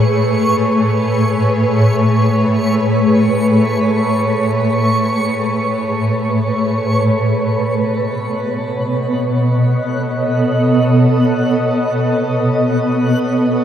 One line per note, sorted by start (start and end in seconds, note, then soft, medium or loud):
0.00 7.06 A2 medium
0.00 7.07 A3 medium
0.00 7.07 G#4 medium
0.00 8.64 B4 medium
0.00 13.64 C#5 medium
0.00 7.09 C#6 medium
7.08 13.64 B2 medium
7.08 13.64 F#6 medium
7.82 13.64 B3 medium
8.74 13.64 D#5 medium
8.98 13.64 A4 medium